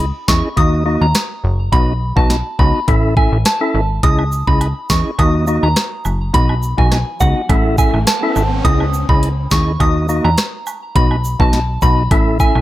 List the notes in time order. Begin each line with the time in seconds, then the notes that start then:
Already playing: C#2
0.00 closed hi-hat
0.28 E2 C#4 E4 G#4 D#5 C#6, kick, snare
0.56 D#2 A#3 D#4 F#4 D#5 D#6, kick, closed hi-hat
0.85 A#3 D#4 F#4 D#5
1.01 D#2 A#5
1.15 cross-stick, snare, closed hi-hat
1.44 F#1
1.72 B1 B3 D#4 F#4 D#5 B5, kick, closed hi-hat
2.16 B1 B3 D#4 F#4 D#5 A5, kick
2.30 snare, closed hi-hat
2.59 C#2 B3 D#4 F#4 D#5 B5, kick
2.88 A1 C#4 E4 A4 E5, kick, closed hi-hat
3.17 C#4 E4 A4 E5 G#5, kick
3.32 A1
3.45 A5, cross-stick, snare, closed hi-hat
3.61 C#4 E4 A4 E5
3.74 G#1
4.03 C#2 C#4 E4 G#4 D#5 D#6, kick, closed hi-hat
4.19 high woodblock
4.32 cabasa
4.47 C#2 C#4 E4 G#4 D#5 B5, kick
4.61 closed hi-hat, high woodblock
4.90 E2 C#4 E4 G#4 D#5 C#6, kick, snare, cabasa
5.18 D#2 A#3 D#4 F#4 D#5 D#6, kick, closed hi-hat, high woodblock
5.47 A#3 D#4 F#4 D#5, cabasa
5.63 D#2 A#5, high woodblock
5.76 cross-stick, snare, closed hi-hat
6.05 F#1, cabasa, high woodblock
6.33 B1 B3 D#4 F#4 D#5 B5, kick, closed hi-hat, riser
6.49 high woodblock
6.63 cabasa
6.78 B1 B3 D#4 F#4 D#5 G#5, kick
6.92 cross-stick, snare, closed hi-hat, high woodblock
7.20 C#2 B3 D#4 F#4 D#5 F#5, kick, cabasa
7.49 A1 C#4 E4 A4 E5, kick, closed hi-hat, high woodblock
7.78 C#4 E4 A4 E5 G#5, kick, cabasa
7.94 A1, high woodblock
8.07 A5, cross-stick, snare, closed hi-hat
8.23 C#4 E4 A4 E5
8.36 G#1, cabasa, high woodblock
8.64 C#2 C#4 E4 G#4 D#5 D#6, kick, closed hi-hat
8.80 high woodblock
8.94 cabasa
9.09 C#2 C#4 E4 G#4 D#5 B5, kick
9.23 closed hi-hat
9.51 D#2 C#4 E4 G#4 D#5 C#6, kick, snare, cabasa
9.80 D#2 A#3 D#4 F#4 D#5 D#6, kick, closed hi-hat, high woodblock
10.09 A#3 D#4 F#4 D#5, cabasa
10.24 E2 A#5, high woodblock
10.38 cross-stick, snare, closed hi-hat
10.67 cabasa, high woodblock
10.95 B1 B3 D#4 F#4 D#5 B5, kick, closed hi-hat
11.11 high woodblock
11.24 cabasa
11.39 B1 B3 D#4 F#4 D#5 A5, kick
11.53 snare, closed hi-hat
11.82 B1 B3 D#4 F#4 D#5 B5, kick, cabasa
12.11 A1 C#4 E4 A4 E5, kick, closed hi-hat, high woodblock
12.40 C#4 E4 A4 E5 G#5, kick, cabasa
12.55 B1, high woodblock